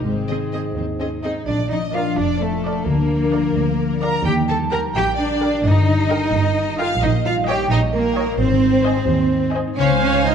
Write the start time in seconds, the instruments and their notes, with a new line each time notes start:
Already playing: harp D#4 D#5
0.05 double bass section G#1, cello section G#2, harp G#2, violin section C4, french horn section C4 D#4, clarinet G#4
0.28 harp D#3, viola section C4 G#4, violin section D#5
0.53 harp G#3, viola section C4 G#4, violin section D#5
0.76 double bass section D#2, cello section D#2, violin section C4, harp D#4
1.00 viola section C4 G#4, violin section C#4 D#5, harp C5
1.23 harp G#3, viola section C4 G#4, violin section D#4 D#5, cello section D#4, vibraphone D#5
1.46 double bass section A#1, harp A#2, cello section D4, vibraphone D5, violin section D5
1.60 harp A#3
1.71 harp F3, cello section D#4, vibraphone D#5, violin section D#5
1.83 harp D4
1.93 cello section F4, viola section A#4 D5, harp D5, violin section D5 F5, vibraphone F5
2.06 harp F4
2.17 double bass section F1, cello section D4, vibraphone D5, harp D5, violin section D5
2.30 harp D6
2.39 cello section A3, vibraphone A4, violin section A4, harp D5
2.53 harp F4
2.64 viola section A#4 D5, violin section D5, harp D5
2.76 harp D4
2.85 double bass section D2, harp D3, cello section A#3, vibraphone A#4, violin section A#4
2.99 harp F3
3.11 harp D4
3.22 harp D5
3.33 harp F4, viola section A#4 D5, violin section F5
3.46 harp D5
3.55 double bass section D2, harp D6
3.69 harp F5
3.81 harp D6
3.93 harp D5
4.01 harp F4, cello section A#4, viola section A#4 D5, violin section F5 A#5, vibraphone A#5
4.16 harp D5
4.25 double bass section D#2, harp D#3, cello section G4, violin section G5, vibraphone G5
4.39 harp D#4
4.48 harp G3, cello section A4, violin section A5, vibraphone A5
4.61 harp G4
4.71 cello section A#4, viola section A#4, harp A#4, violin section G5 A#5, vibraphone A#5
4.85 harp G4
4.94 double bass section A#1, cello section G4, violin section G5, vibraphone G5
5.08 harp A#5
5.17 cello section D4, vibraphone D5, violin section D5, harp G5
5.30 harp G4
5.41 viola section A#4, harp A#4, violin section G5
5.53 harp G4
5.64 double bass section G1, harp G2, cello section D#4, vibraphone D#5, violin section D#5
5.76 harp D#3
5.88 harp G3
5.99 harp G4
6.10 viola section A#4 D#5, harp A#4, violin section G5
6.23 harp G4
6.34 double bass section G1, harp G5
6.46 harp A#5
6.57 harp G5
6.68 harp G4
6.78 cello section F4, viola section A#4 D#5, harp A#4, vibraphone F5, violin section F5 G5
6.91 harp G4
7.01 double bass section A#1, harp A#2, cello section D#4, vibraphone D#5, violin section D#5
7.14 harp A#3
7.25 harp G3, cello section F4, vibraphone F5, violin section F5
7.37 harp D#4
7.48 cello section G4, viola section C#5 D#5, harp C#5, vibraphone G5, violin section G5
7.59 harp G4
7.70 double bass section A#1, cello section D#4, harp D#5, vibraphone D#5, violin section D#5
7.82 harp C#6
7.93 cello section A#3, vibraphone A#4, violin section A#4, harp D#5
8.05 harp G4
8.17 viola section C#5 D#5, harp C#5, violin section G5
8.28 harp D#4
8.38 double bass section G#1, harp G#2, cello section C4, vibraphone C5, violin section C5
8.51 harp D#3
8.62 harp G#3
8.74 harp D#4
8.85 viola section C5 D#5, harp C5, violin section G#5
8.97 harp G#4
9.08 double bass section D#2, harp D#5
9.21 harp C6
9.32 harp D#5
9.44 harp G#4
9.53 viola section C5 D#5, harp C5, violin section G#5
9.67 harp D#4
9.76 double bass section C#2, harp C#3, cello section C#4, viola section C5 F5, vibraphone C#5, violin section C#5 G#5
9.90 harp C#4
10.00 harp G#3, cello section C#4, vibraphone C#5, violin section C#5
10.13 harp F4
10.24 cello section D#4, harp C5, violin section D#5